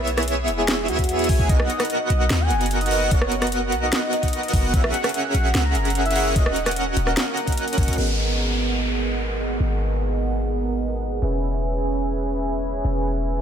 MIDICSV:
0, 0, Header, 1, 7, 480
1, 0, Start_track
1, 0, Key_signature, 5, "minor"
1, 0, Tempo, 405405
1, 1768, Time_signature, 4, 2, 24, 8
1, 15885, End_track
2, 0, Start_track
2, 0, Title_t, "Digital synth lead"
2, 0, Program_c, 0, 84
2, 0, Note_on_c, 0, 76, 104
2, 1024, Note_off_c, 0, 76, 0
2, 1047, Note_on_c, 0, 76, 104
2, 1499, Note_off_c, 0, 76, 0
2, 1528, Note_on_c, 0, 80, 95
2, 1739, Note_off_c, 0, 80, 0
2, 1767, Note_on_c, 0, 78, 106
2, 3419, Note_off_c, 0, 78, 0
2, 3447, Note_on_c, 0, 78, 109
2, 3659, Note_off_c, 0, 78, 0
2, 3686, Note_on_c, 0, 78, 106
2, 5338, Note_off_c, 0, 78, 0
2, 5367, Note_on_c, 0, 78, 103
2, 5579, Note_off_c, 0, 78, 0
2, 5607, Note_on_c, 0, 78, 108
2, 7259, Note_off_c, 0, 78, 0
2, 7287, Note_on_c, 0, 78, 106
2, 7499, Note_off_c, 0, 78, 0
2, 7528, Note_on_c, 0, 78, 107
2, 9179, Note_off_c, 0, 78, 0
2, 9208, Note_on_c, 0, 78, 108
2, 9419, Note_off_c, 0, 78, 0
2, 15885, End_track
3, 0, Start_track
3, 0, Title_t, "Soft synth lead"
3, 0, Program_c, 1, 80
3, 0, Note_on_c, 1, 71, 104
3, 171, Note_off_c, 1, 71, 0
3, 688, Note_on_c, 1, 68, 93
3, 1011, Note_off_c, 1, 68, 0
3, 1049, Note_on_c, 1, 66, 101
3, 1673, Note_off_c, 1, 66, 0
3, 1766, Note_on_c, 1, 75, 100
3, 1982, Note_off_c, 1, 75, 0
3, 2004, Note_on_c, 1, 75, 95
3, 2329, Note_off_c, 1, 75, 0
3, 2365, Note_on_c, 1, 75, 103
3, 2847, Note_on_c, 1, 80, 100
3, 2865, Note_off_c, 1, 75, 0
3, 3278, Note_off_c, 1, 80, 0
3, 3330, Note_on_c, 1, 75, 99
3, 3692, Note_on_c, 1, 73, 96
3, 3710, Note_off_c, 1, 75, 0
3, 4013, Note_off_c, 1, 73, 0
3, 4531, Note_on_c, 1, 75, 94
3, 4852, Note_off_c, 1, 75, 0
3, 4893, Note_on_c, 1, 75, 106
3, 5611, Note_on_c, 1, 76, 104
3, 5629, Note_off_c, 1, 75, 0
3, 5825, Note_off_c, 1, 76, 0
3, 5854, Note_on_c, 1, 78, 95
3, 6174, Note_off_c, 1, 78, 0
3, 6212, Note_on_c, 1, 78, 103
3, 6640, Note_off_c, 1, 78, 0
3, 6690, Note_on_c, 1, 82, 101
3, 7120, Note_off_c, 1, 82, 0
3, 7171, Note_on_c, 1, 76, 97
3, 7492, Note_off_c, 1, 76, 0
3, 7532, Note_on_c, 1, 75, 104
3, 7853, Note_off_c, 1, 75, 0
3, 8373, Note_on_c, 1, 70, 93
3, 8693, Note_off_c, 1, 70, 0
3, 8730, Note_on_c, 1, 70, 107
3, 9353, Note_off_c, 1, 70, 0
3, 15885, End_track
4, 0, Start_track
4, 0, Title_t, "Supersaw synth"
4, 0, Program_c, 2, 81
4, 0, Note_on_c, 2, 59, 100
4, 0, Note_on_c, 2, 64, 92
4, 0, Note_on_c, 2, 68, 92
4, 0, Note_on_c, 2, 73, 89
4, 0, Note_on_c, 2, 76, 109
4, 1025, Note_off_c, 2, 59, 0
4, 1025, Note_off_c, 2, 64, 0
4, 1025, Note_off_c, 2, 68, 0
4, 1025, Note_off_c, 2, 73, 0
4, 1025, Note_off_c, 2, 76, 0
4, 1047, Note_on_c, 2, 68, 87
4, 1048, Note_on_c, 2, 59, 94
4, 1048, Note_on_c, 2, 73, 85
4, 1049, Note_on_c, 2, 64, 83
4, 1049, Note_on_c, 2, 76, 101
4, 1499, Note_off_c, 2, 59, 0
4, 1499, Note_off_c, 2, 68, 0
4, 1499, Note_off_c, 2, 73, 0
4, 1500, Note_off_c, 2, 64, 0
4, 1500, Note_off_c, 2, 76, 0
4, 1528, Note_on_c, 2, 59, 85
4, 1528, Note_on_c, 2, 68, 81
4, 1528, Note_on_c, 2, 80, 95
4, 1529, Note_on_c, 2, 64, 81
4, 1529, Note_on_c, 2, 73, 79
4, 1739, Note_off_c, 2, 59, 0
4, 1739, Note_off_c, 2, 68, 0
4, 1740, Note_off_c, 2, 64, 0
4, 1740, Note_off_c, 2, 73, 0
4, 1740, Note_off_c, 2, 80, 0
4, 1766, Note_on_c, 2, 78, 108
4, 1767, Note_on_c, 2, 70, 93
4, 1767, Note_on_c, 2, 75, 90
4, 1768, Note_on_c, 2, 59, 101
4, 1768, Note_on_c, 2, 66, 90
4, 3418, Note_off_c, 2, 78, 0
4, 3419, Note_off_c, 2, 59, 0
4, 3419, Note_off_c, 2, 66, 0
4, 3419, Note_off_c, 2, 70, 0
4, 3419, Note_off_c, 2, 75, 0
4, 3449, Note_on_c, 2, 59, 98
4, 3449, Note_on_c, 2, 70, 90
4, 3449, Note_on_c, 2, 75, 89
4, 3449, Note_on_c, 2, 78, 105
4, 3450, Note_on_c, 2, 66, 92
4, 3660, Note_off_c, 2, 59, 0
4, 3660, Note_off_c, 2, 66, 0
4, 3660, Note_off_c, 2, 70, 0
4, 3660, Note_off_c, 2, 75, 0
4, 3660, Note_off_c, 2, 78, 0
4, 3688, Note_on_c, 2, 59, 97
4, 5339, Note_off_c, 2, 59, 0
4, 5367, Note_on_c, 2, 66, 88
4, 5367, Note_on_c, 2, 70, 90
4, 5367, Note_on_c, 2, 75, 92
4, 5368, Note_on_c, 2, 59, 103
4, 5579, Note_off_c, 2, 59, 0
4, 5579, Note_off_c, 2, 66, 0
4, 5579, Note_off_c, 2, 70, 0
4, 5579, Note_off_c, 2, 75, 0
4, 5606, Note_on_c, 2, 68, 90
4, 5606, Note_on_c, 2, 70, 87
4, 5606, Note_on_c, 2, 76, 92
4, 5606, Note_on_c, 2, 78, 109
4, 5607, Note_on_c, 2, 61, 100
4, 7258, Note_off_c, 2, 68, 0
4, 7258, Note_off_c, 2, 70, 0
4, 7258, Note_off_c, 2, 76, 0
4, 7258, Note_off_c, 2, 78, 0
4, 7259, Note_off_c, 2, 61, 0
4, 7286, Note_on_c, 2, 70, 89
4, 7286, Note_on_c, 2, 76, 89
4, 7287, Note_on_c, 2, 61, 98
4, 7287, Note_on_c, 2, 68, 92
4, 7287, Note_on_c, 2, 78, 114
4, 7498, Note_off_c, 2, 76, 0
4, 7499, Note_off_c, 2, 61, 0
4, 7499, Note_off_c, 2, 68, 0
4, 7499, Note_off_c, 2, 70, 0
4, 7499, Note_off_c, 2, 78, 0
4, 7525, Note_on_c, 2, 61, 100
4, 7525, Note_on_c, 2, 70, 89
4, 7525, Note_on_c, 2, 75, 89
4, 7526, Note_on_c, 2, 66, 91
4, 7526, Note_on_c, 2, 78, 110
4, 9178, Note_off_c, 2, 61, 0
4, 9178, Note_off_c, 2, 66, 0
4, 9178, Note_off_c, 2, 70, 0
4, 9178, Note_off_c, 2, 75, 0
4, 9178, Note_off_c, 2, 78, 0
4, 9209, Note_on_c, 2, 66, 90
4, 9210, Note_on_c, 2, 61, 97
4, 9210, Note_on_c, 2, 70, 87
4, 9210, Note_on_c, 2, 75, 89
4, 9210, Note_on_c, 2, 78, 110
4, 9420, Note_off_c, 2, 61, 0
4, 9420, Note_off_c, 2, 66, 0
4, 9420, Note_off_c, 2, 70, 0
4, 9420, Note_off_c, 2, 75, 0
4, 9420, Note_off_c, 2, 78, 0
4, 9449, Note_on_c, 2, 59, 76
4, 9449, Note_on_c, 2, 68, 68
4, 9449, Note_on_c, 2, 75, 70
4, 9450, Note_on_c, 2, 70, 68
4, 13260, Note_off_c, 2, 59, 0
4, 13260, Note_off_c, 2, 68, 0
4, 13260, Note_off_c, 2, 70, 0
4, 13260, Note_off_c, 2, 75, 0
4, 13289, Note_on_c, 2, 61, 73
4, 13289, Note_on_c, 2, 68, 68
4, 13289, Note_on_c, 2, 71, 70
4, 13289, Note_on_c, 2, 76, 72
4, 13289, Note_on_c, 2, 80, 84
4, 15885, Note_off_c, 2, 61, 0
4, 15885, Note_off_c, 2, 68, 0
4, 15885, Note_off_c, 2, 71, 0
4, 15885, Note_off_c, 2, 76, 0
4, 15885, Note_off_c, 2, 80, 0
4, 15885, End_track
5, 0, Start_track
5, 0, Title_t, "808-style bass"
5, 0, Program_c, 3, 38
5, 0, Note_on_c, 3, 35, 81
5, 567, Note_on_c, 3, 28, 88
5, 585, Note_off_c, 3, 35, 0
5, 1048, Note_on_c, 3, 40, 97
5, 1065, Note_off_c, 3, 28, 0
5, 1633, Note_off_c, 3, 40, 0
5, 1649, Note_on_c, 3, 37, 101
5, 1759, Note_off_c, 3, 37, 0
5, 1769, Note_on_c, 3, 35, 100
5, 1989, Note_off_c, 3, 35, 0
5, 2486, Note_on_c, 3, 35, 89
5, 2708, Note_off_c, 3, 35, 0
5, 2725, Note_on_c, 3, 39, 87
5, 2966, Note_on_c, 3, 30, 82
5, 2984, Note_off_c, 3, 39, 0
5, 4408, Note_on_c, 3, 35, 88
5, 4425, Note_off_c, 3, 30, 0
5, 4629, Note_off_c, 3, 35, 0
5, 5368, Note_on_c, 3, 30, 93
5, 5589, Note_off_c, 3, 30, 0
5, 5608, Note_on_c, 3, 34, 104
5, 5829, Note_off_c, 3, 34, 0
5, 6327, Note_on_c, 3, 34, 87
5, 6548, Note_off_c, 3, 34, 0
5, 6567, Note_on_c, 3, 37, 86
5, 6808, Note_on_c, 3, 30, 82
5, 6826, Note_off_c, 3, 37, 0
5, 7528, Note_on_c, 3, 27, 81
5, 7546, Note_off_c, 3, 30, 0
5, 8233, Note_off_c, 3, 27, 0
5, 8248, Note_on_c, 3, 27, 92
5, 8469, Note_off_c, 3, 27, 0
5, 9209, Note_on_c, 3, 30, 107
5, 9319, Note_off_c, 3, 30, 0
5, 9330, Note_on_c, 3, 37, 84
5, 9439, Note_off_c, 3, 37, 0
5, 9449, Note_on_c, 3, 32, 84
5, 11344, Note_off_c, 3, 32, 0
5, 11368, Note_on_c, 3, 32, 89
5, 13264, Note_off_c, 3, 32, 0
5, 13287, Note_on_c, 3, 28, 87
5, 15184, Note_off_c, 3, 28, 0
5, 15208, Note_on_c, 3, 28, 85
5, 15885, Note_off_c, 3, 28, 0
5, 15885, End_track
6, 0, Start_track
6, 0, Title_t, "Downlifter"
6, 0, Program_c, 4, 103
6, 9448, Note_on_c, 4, 60, 68
6, 13288, Note_off_c, 4, 60, 0
6, 15885, End_track
7, 0, Start_track
7, 0, Title_t, "Drums"
7, 89, Note_on_c, 9, 42, 63
7, 207, Note_off_c, 9, 42, 0
7, 208, Note_on_c, 9, 37, 84
7, 208, Note_on_c, 9, 42, 49
7, 268, Note_off_c, 9, 42, 0
7, 268, Note_on_c, 9, 42, 63
7, 326, Note_off_c, 9, 37, 0
7, 328, Note_off_c, 9, 42, 0
7, 328, Note_on_c, 9, 42, 76
7, 447, Note_off_c, 9, 42, 0
7, 568, Note_on_c, 9, 42, 66
7, 686, Note_off_c, 9, 42, 0
7, 808, Note_on_c, 9, 38, 126
7, 808, Note_on_c, 9, 42, 78
7, 926, Note_off_c, 9, 38, 0
7, 926, Note_off_c, 9, 42, 0
7, 1047, Note_on_c, 9, 42, 66
7, 1165, Note_off_c, 9, 42, 0
7, 1169, Note_on_c, 9, 36, 63
7, 1169, Note_on_c, 9, 42, 49
7, 1229, Note_off_c, 9, 42, 0
7, 1229, Note_on_c, 9, 42, 64
7, 1287, Note_off_c, 9, 36, 0
7, 1289, Note_off_c, 9, 42, 0
7, 1289, Note_on_c, 9, 42, 78
7, 1407, Note_off_c, 9, 42, 0
7, 1410, Note_on_c, 9, 42, 47
7, 1468, Note_off_c, 9, 42, 0
7, 1468, Note_on_c, 9, 42, 62
7, 1529, Note_on_c, 9, 36, 114
7, 1529, Note_on_c, 9, 46, 89
7, 1586, Note_off_c, 9, 42, 0
7, 1647, Note_off_c, 9, 36, 0
7, 1647, Note_off_c, 9, 46, 0
7, 1768, Note_on_c, 9, 36, 124
7, 1769, Note_on_c, 9, 42, 75
7, 1887, Note_off_c, 9, 36, 0
7, 1887, Note_off_c, 9, 42, 0
7, 1889, Note_on_c, 9, 37, 86
7, 2007, Note_off_c, 9, 37, 0
7, 2009, Note_on_c, 9, 42, 66
7, 2128, Note_off_c, 9, 42, 0
7, 2128, Note_on_c, 9, 37, 85
7, 2128, Note_on_c, 9, 42, 51
7, 2188, Note_off_c, 9, 42, 0
7, 2188, Note_on_c, 9, 42, 64
7, 2247, Note_off_c, 9, 37, 0
7, 2248, Note_off_c, 9, 42, 0
7, 2248, Note_on_c, 9, 42, 80
7, 2366, Note_off_c, 9, 42, 0
7, 2488, Note_on_c, 9, 42, 65
7, 2606, Note_off_c, 9, 42, 0
7, 2727, Note_on_c, 9, 38, 119
7, 2727, Note_on_c, 9, 42, 75
7, 2845, Note_off_c, 9, 38, 0
7, 2845, Note_off_c, 9, 42, 0
7, 2966, Note_on_c, 9, 42, 63
7, 3084, Note_off_c, 9, 42, 0
7, 3087, Note_on_c, 9, 42, 46
7, 3148, Note_off_c, 9, 42, 0
7, 3148, Note_on_c, 9, 42, 61
7, 3207, Note_off_c, 9, 42, 0
7, 3207, Note_on_c, 9, 42, 79
7, 3325, Note_off_c, 9, 42, 0
7, 3327, Note_on_c, 9, 42, 46
7, 3386, Note_off_c, 9, 42, 0
7, 3386, Note_on_c, 9, 42, 61
7, 3446, Note_on_c, 9, 46, 92
7, 3504, Note_off_c, 9, 42, 0
7, 3564, Note_off_c, 9, 46, 0
7, 3687, Note_on_c, 9, 42, 83
7, 3688, Note_on_c, 9, 36, 114
7, 3805, Note_off_c, 9, 42, 0
7, 3806, Note_off_c, 9, 36, 0
7, 3807, Note_on_c, 9, 37, 83
7, 3925, Note_off_c, 9, 37, 0
7, 3926, Note_on_c, 9, 42, 67
7, 4044, Note_off_c, 9, 42, 0
7, 4047, Note_on_c, 9, 37, 85
7, 4047, Note_on_c, 9, 42, 52
7, 4107, Note_off_c, 9, 42, 0
7, 4107, Note_on_c, 9, 42, 66
7, 4166, Note_off_c, 9, 37, 0
7, 4169, Note_off_c, 9, 42, 0
7, 4169, Note_on_c, 9, 42, 82
7, 4287, Note_off_c, 9, 42, 0
7, 4408, Note_on_c, 9, 42, 66
7, 4526, Note_off_c, 9, 42, 0
7, 4648, Note_on_c, 9, 38, 115
7, 4648, Note_on_c, 9, 42, 79
7, 4767, Note_off_c, 9, 38, 0
7, 4767, Note_off_c, 9, 42, 0
7, 4887, Note_on_c, 9, 42, 69
7, 5006, Note_off_c, 9, 42, 0
7, 5008, Note_on_c, 9, 36, 58
7, 5008, Note_on_c, 9, 42, 49
7, 5068, Note_off_c, 9, 42, 0
7, 5068, Note_on_c, 9, 42, 64
7, 5127, Note_off_c, 9, 36, 0
7, 5127, Note_off_c, 9, 42, 0
7, 5127, Note_on_c, 9, 42, 82
7, 5246, Note_off_c, 9, 42, 0
7, 5249, Note_on_c, 9, 42, 49
7, 5309, Note_off_c, 9, 42, 0
7, 5309, Note_on_c, 9, 42, 65
7, 5368, Note_on_c, 9, 36, 104
7, 5369, Note_on_c, 9, 46, 98
7, 5427, Note_off_c, 9, 42, 0
7, 5486, Note_off_c, 9, 36, 0
7, 5487, Note_off_c, 9, 46, 0
7, 5608, Note_on_c, 9, 36, 114
7, 5609, Note_on_c, 9, 42, 82
7, 5726, Note_off_c, 9, 36, 0
7, 5728, Note_off_c, 9, 42, 0
7, 5730, Note_on_c, 9, 37, 81
7, 5848, Note_off_c, 9, 37, 0
7, 5848, Note_on_c, 9, 42, 67
7, 5967, Note_off_c, 9, 42, 0
7, 5969, Note_on_c, 9, 37, 88
7, 5969, Note_on_c, 9, 42, 55
7, 6029, Note_off_c, 9, 42, 0
7, 6029, Note_on_c, 9, 42, 70
7, 6088, Note_off_c, 9, 37, 0
7, 6088, Note_off_c, 9, 42, 0
7, 6088, Note_on_c, 9, 42, 85
7, 6207, Note_off_c, 9, 42, 0
7, 6329, Note_on_c, 9, 42, 70
7, 6448, Note_off_c, 9, 42, 0
7, 6568, Note_on_c, 9, 38, 113
7, 6568, Note_on_c, 9, 42, 82
7, 6686, Note_off_c, 9, 38, 0
7, 6686, Note_off_c, 9, 42, 0
7, 6808, Note_on_c, 9, 42, 70
7, 6926, Note_off_c, 9, 42, 0
7, 6929, Note_on_c, 9, 42, 50
7, 6989, Note_off_c, 9, 42, 0
7, 6989, Note_on_c, 9, 42, 68
7, 7048, Note_off_c, 9, 42, 0
7, 7048, Note_on_c, 9, 42, 86
7, 7166, Note_off_c, 9, 42, 0
7, 7170, Note_on_c, 9, 42, 50
7, 7230, Note_off_c, 9, 42, 0
7, 7230, Note_on_c, 9, 42, 68
7, 7289, Note_on_c, 9, 46, 100
7, 7348, Note_off_c, 9, 42, 0
7, 7407, Note_off_c, 9, 46, 0
7, 7528, Note_on_c, 9, 36, 115
7, 7530, Note_on_c, 9, 42, 86
7, 7647, Note_off_c, 9, 36, 0
7, 7648, Note_off_c, 9, 42, 0
7, 7650, Note_on_c, 9, 37, 78
7, 7768, Note_off_c, 9, 37, 0
7, 7768, Note_on_c, 9, 42, 72
7, 7886, Note_off_c, 9, 42, 0
7, 7889, Note_on_c, 9, 37, 81
7, 7889, Note_on_c, 9, 42, 53
7, 7949, Note_off_c, 9, 42, 0
7, 7949, Note_on_c, 9, 42, 69
7, 8007, Note_off_c, 9, 37, 0
7, 8009, Note_off_c, 9, 42, 0
7, 8009, Note_on_c, 9, 42, 87
7, 8127, Note_off_c, 9, 42, 0
7, 8248, Note_on_c, 9, 42, 71
7, 8367, Note_off_c, 9, 42, 0
7, 8368, Note_on_c, 9, 37, 64
7, 8487, Note_off_c, 9, 37, 0
7, 8489, Note_on_c, 9, 38, 116
7, 8489, Note_on_c, 9, 42, 84
7, 8607, Note_off_c, 9, 38, 0
7, 8607, Note_off_c, 9, 42, 0
7, 8730, Note_on_c, 9, 42, 73
7, 8848, Note_off_c, 9, 42, 0
7, 8850, Note_on_c, 9, 36, 60
7, 8850, Note_on_c, 9, 42, 52
7, 8908, Note_off_c, 9, 42, 0
7, 8908, Note_on_c, 9, 42, 69
7, 8968, Note_off_c, 9, 36, 0
7, 8968, Note_off_c, 9, 42, 0
7, 8968, Note_on_c, 9, 42, 89
7, 9087, Note_off_c, 9, 42, 0
7, 9088, Note_on_c, 9, 42, 51
7, 9149, Note_off_c, 9, 42, 0
7, 9149, Note_on_c, 9, 42, 69
7, 9209, Note_on_c, 9, 36, 107
7, 9210, Note_off_c, 9, 42, 0
7, 9210, Note_on_c, 9, 42, 55
7, 9270, Note_off_c, 9, 42, 0
7, 9270, Note_on_c, 9, 42, 64
7, 9327, Note_off_c, 9, 36, 0
7, 9330, Note_off_c, 9, 42, 0
7, 9330, Note_on_c, 9, 42, 77
7, 9388, Note_off_c, 9, 42, 0
7, 9388, Note_on_c, 9, 42, 88
7, 9448, Note_on_c, 9, 49, 78
7, 9506, Note_off_c, 9, 42, 0
7, 9566, Note_off_c, 9, 49, 0
7, 15885, End_track
0, 0, End_of_file